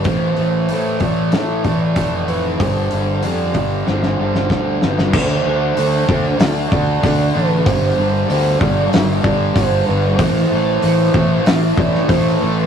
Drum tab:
CC |----------------|----------------|x---------------|----------------|
HH |o-o-o-o-o-o-o-o-|o-o-o-o---------|----o---o---o---|o---o---o---o---|
SD |--------o-------|--------oo-oo-oo|--------o-------|--------o-------|
BD |o-----o---o-o---|o-----o-----o---|o-----o---o-o---|o-----o---o-o---|

CC |----------------|
HH |o---o---o---o---|
SD |--------o--o----|
BD |o-----o---o-o---|